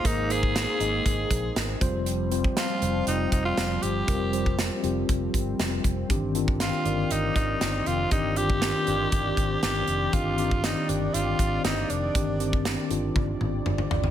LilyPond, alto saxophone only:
\new Staff \with { instrumentName = "Alto saxophone" } { \time 4/4 \key c \minor \tempo 4 = 119 ees'8 aes'2. r8 | r4 f'4 ees'8 ees'16 f'8. g'8~ | g'4 r2. | r4 f'4 ees'8 ees'4 f'8 |
ees'8 g'2~ g'8 g'4 | f'4 ees'8 d'8 f'4 ees'8 d'8~ | d'4 r2. | }